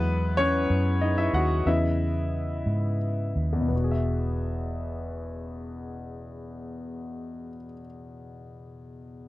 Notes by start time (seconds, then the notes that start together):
Already playing: E2 F#3 G#3 B3 E4 B4
0.37 C#4 C#5
0.70 F#2
1.01 D#4 D#5
1.18 E4 E5
1.33 D#2 F#4 F#5
1.66 E2 C#3 B3 E4 D#5 E5
2.66 G#2
3.36 D#2
3.53 E2
3.61 B2
3.68 E1 B3
3.76 F#4
3.84 G#4
3.91 E5